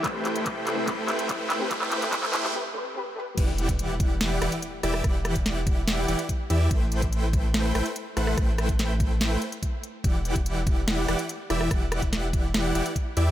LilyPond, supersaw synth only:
\new Staff \with { instrumentName = "Supersaw synth" } { \time 4/4 \key e \minor \tempo 4 = 144 <a e' b' c'' g''>2 <a e' b' c'' g''>2 | <a e' b' c'' g''>4 <a e' b' c'' g''>4 r2 | <e e' g' d'' fis''>2~ <e e' g' d'' fis''>8 <e e' g' d'' fis''>8 r8 <e e' g' d'' e''>8 | <e e' g' d'' fis''>2~ <e e' g' d'' fis''>8 <e e' g' d'' fis''>8 r8 <e e' g' d'' e''>8 |
<a e' b' c'' g''>2~ <a e' b' c'' g''>8 <a e' b' c'' g''>8 r8 <a e' b' c'' fis''>8 | <a e' b' c'' g''>2~ <a e' b' c'' g''>8 r4. | <e e' g' d'' fis''>2~ <e e' g' d'' fis''>8 <e e' g' d'' fis''>8 r8 <e e' g' d'' e''>8 | <e e' g' d'' fis''>2~ <e e' g' d'' fis''>8 <e e' g' d'' fis''>8 r8 <e e' g' d'' e''>8 | }